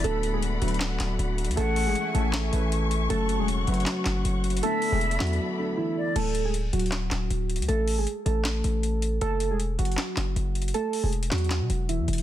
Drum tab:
CC |------------------------------------------------------------------------------------------------|------------------------------------------------------------------------------------------------|------------------------------------------------------------------------------------------------|------------------------------------------------------------------------------------------------|
HH |x-----------x-----------x-----------x---x---x---x-----------x-----------x-----------x---x---x---|x-----------o-----------x-----------x-----------x-----------x-----------x-----------x-----------|x-----------x-----------x-----------x---x---x---x-----------x-----------x-----------x---x---x---|x-----------o-----------x-----x-----x---x---x---------------------------------------------------|
CP |------------------------------------------------x-----------x-----------------------------------|------------------------------------------------x-----------------------------------------------|------------------------------------------------x-----------x-----------------------------------|------------------------------------x-----------------------------------------------------------|
SD |------------------------------------------------o-----------o-----------------------------------|------------------------------------------------o-----------------------------------------------|------------------------------------------------o-----------o-----------------------------------|------------------------------------o-----------------------------------------------------------|

CC |x-----------------------------------------------------------------------------------------------|------------------------------------------------------------------------------------------------|------------------------------------------------------------------------------------------------|------------------------------------------------------------------------------------------------|
HH |x-----------x-----------x-----------x---x---x---x-----------x-----------x-----------x---x---x---|x-----------o-----------x-----------x-----------x-----------x-----------x-----------x-----------|x-----------x-----------x-----------x---x---x---x-----------x-----------x-----------x---x---x---|x-----------o-----------x-----x-----x---x---x---x-----------x-----------x-----------x--x--x-----|
CP |------------------------------------------------x-----------x-----------------------------------|------------------------------------------------x-----------------------------------------------|------------------------------------------------x-----------x-----------------------------------|------------------------------------x-----------x-----------------------------------------------|
SD |------------------------------------------------o-----------o-----------------------------------|------------------------------------------------o-----------------------------------------------|------------------------------------------------o-----------o-----------------------------------|------------------------------------o-----------o-----------------------------------------------|